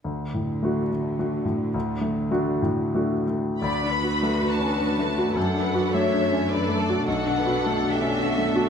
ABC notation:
X:1
M:3/4
L:1/8
Q:1/4=105
K:D
V:1 name="Violin section"
z6 | z6 | b3 a3 | f2 e2 d2 |
f3 e3 |]
V:2 name="Violin section"
z6 | z6 | d B4- B | A B c2 B A |
F B A G F A |]
V:3 name="Viola section"
z6 | z6 | [DF]6 | [DA]4 [DA]2 |
[DA]6 |]
V:4 name="Grand piano"
D,, A,, [A,DF] A, [A,DF] A,, | D,, A, [A,DF] A,, [A,DF] A, | (3D,, D F (3A, D C (3D A, F | (3F,, D F (3A, D C (3D A, F |
(3B,,, D F (3A, D C (3D A, F |]
V:5 name="Cello section" clef=bass
D,6- | D,4- D, z | D,,6 | F,,6 |
B,,6 |]